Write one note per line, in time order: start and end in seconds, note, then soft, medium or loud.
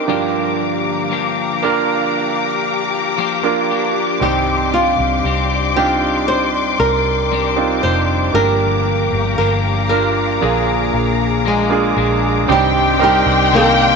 0.00 0.57 A#4 medium
0.00 12.45 D6 medium
0.07 1.59 G2 soft
0.07 1.11 G2 medium
0.07 1.59 D3 soft
0.07 3.59 D3 medium
0.07 1.10 F3 medium
0.07 1.55 A#3 medium
0.07 1.11 A#3 medium
0.07 1.55 D4 medium
0.07 1.12 D4 medium
0.07 1.55 F4 medium
0.07 8.32 G4 medium
0.07 1.56 G4 medium
0.07 1.13 G4 medium
0.07 4.18 F5 medium
0.07 4.18 A#5 medium
1.11 1.63 F3 medium
1.11 1.63 A#3 medium
1.11 1.62 D4 medium
1.11 1.61 G4 medium
1.63 3.17 F3 soft
1.63 3.35 A#3 medium
1.63 3.18 A#3 soft
1.63 3.19 D4 soft
1.63 3.35 D4 medium
1.63 3.35 F4 medium
1.63 3.20 G4 soft
1.63 3.36 A#4 medium
3.18 3.70 F3 medium
3.18 3.70 A#3 medium
3.18 3.70 D4 medium
3.18 3.69 G4 medium
3.43 4.17 A#3 medium
3.43 4.18 D4 medium
3.43 4.18 F4 medium
3.43 4.19 A#4 medium
3.70 4.22 F3 soft
3.70 4.23 A#3 soft
3.70 4.22 D4 medium
3.70 4.22 G4 soft
4.20 4.95 C2 medium
4.20 5.73 G2 medium
4.20 5.25 C3 medium
4.20 5.25 D#3 medium
4.20 5.25 G3 medium
4.20 5.68 C4 medium
4.20 5.25 C4 medium
4.20 5.69 D4 medium
4.20 5.26 D4 medium
4.20 5.69 D#4 medium
4.20 5.69 G4 medium
4.20 4.70 G4 medium
4.20 5.27 G4 medium
4.20 8.31 D5 medium
4.20 8.31 C6 medium
4.74 5.73 F4 medium
4.99 5.23 C2 medium
5.24 6.76 C2 medium
5.24 5.77 G3 medium
5.24 5.77 C4 medium
5.24 5.77 D4 soft
5.24 5.76 G4 medium
5.76 7.31 G3 soft
5.76 7.48 C4 medium
5.76 7.32 C4 soft
5.76 7.49 D4 medium
5.76 7.33 D4 soft
5.76 7.49 D#4 medium
5.76 7.49 F4 medium
5.76 6.28 G4 medium
5.76 7.34 G4 soft
6.28 6.79 C5 medium
6.79 7.79 C2 medium
6.79 7.83 A#4 medium
7.32 7.84 G3 medium
7.32 7.84 C4 medium
7.32 7.83 D4 medium
7.32 7.82 G4 medium
7.56 8.31 C4 medium
7.56 8.31 D4 medium
7.56 8.31 D#4 medium
7.56 8.31 F4 medium
7.83 8.31 F1 medium
7.83 8.36 G3 soft
7.83 8.36 C4 soft
7.83 8.36 D4 soft
7.83 8.35 G4 soft
7.83 8.34 C5 medium
8.33 9.08 G1 medium
8.33 9.86 G2 medium
8.33 9.39 G2 medium
8.33 9.86 D3 soft
8.33 10.42 D3 medium
8.33 9.38 F3 medium
8.33 9.82 A#3 medium
8.33 9.39 A#3 medium
8.33 9.82 D4 medium
8.33 9.40 D4 medium
8.33 9.82 F4 soft
8.33 9.83 G4 medium
8.33 10.40 G4 medium
8.33 9.40 G4 medium
8.33 9.34 A#4 medium
8.33 12.45 F5 medium
8.33 12.45 A#5 medium
9.12 9.37 G1 medium
9.38 10.38 G1 medium
9.38 9.90 F3 soft
9.38 9.90 A#3 medium
9.38 9.90 D4 soft
9.38 9.89 G4 medium
9.38 9.52 A#4 medium
9.89 10.41 F3 soft
9.89 10.39 A#3 medium
9.89 10.42 A#3 soft
9.89 10.40 D4 medium
9.89 10.42 D4 soft
9.89 10.40 F4 medium
9.89 10.42 G4 soft
9.89 11.93 A#4 medium
9.89 10.42 A#4 medium
10.41 10.91 A#1 medium
10.41 11.93 A#2 soft
10.41 11.46 A#2 medium
10.41 11.51 D3 medium
10.41 11.93 F3 soft
10.41 11.44 F3 medium
10.41 11.64 A#3 medium
10.41 11.45 A#3 medium
10.41 11.65 D4 medium
10.41 11.46 D4 medium
10.41 11.65 F4 medium
10.41 12.47 G#4 medium
10.41 11.65 G#4 medium
10.41 11.46 G#4 medium
10.94 11.93 A#1 medium
11.45 11.97 F3 medium
11.45 12.46 G#3 medium
11.45 11.97 A#3 medium
11.45 11.97 D4 soft
11.45 11.96 G#4 medium
11.45 12.46 G#4 medium
11.70 12.44 A#3 medium
11.70 12.45 D4 medium
11.70 12.45 F4 medium
11.70 12.46 G#4 medium
11.96 12.45 A#1 medium
11.96 12.49 F3 soft
11.96 12.49 A#3 soft
11.96 12.48 D4 soft
11.96 12.49 G#4 soft
12.48 13.23 C2 medium
12.48 13.96 G2 medium
12.48 13.00 C3 medium
12.48 13.01 D#3 medium
12.48 13.01 G3 medium
12.48 12.99 G3 medium
12.48 12.98 C4 medium
12.48 13.00 C4 medium
12.48 12.98 D4 medium
12.48 12.99 D4 medium
12.48 12.98 D#4 medium
12.48 13.96 G4 medium
12.48 12.99 G4 medium
12.48 13.96 G4 medium
12.48 13.96 D5 medium
12.48 13.96 G5 loud
12.48 13.96 C6 medium
12.48 13.96 D6 medium
12.52 13.03 G4 medium
12.99 13.52 G3 soft
12.99 13.50 G3 medium
12.99 13.96 C4 medium
12.99 13.52 C4 soft
12.99 13.96 D4 medium
12.99 13.52 D4 soft
12.99 13.96 D#4 medium
12.99 13.52 G4 medium
12.99 13.96 A#4 medium
13.04 13.56 G4 medium
13.26 13.96 C2 medium
13.52 13.96 C3 medium
13.52 13.96 D#3 medium
13.52 13.96 G3 medium
13.52 13.96 A#3 medium
13.52 13.96 C4 medium
13.52 13.96 D4 medium
13.52 13.96 G4 medium
13.56 13.96 A#4 medium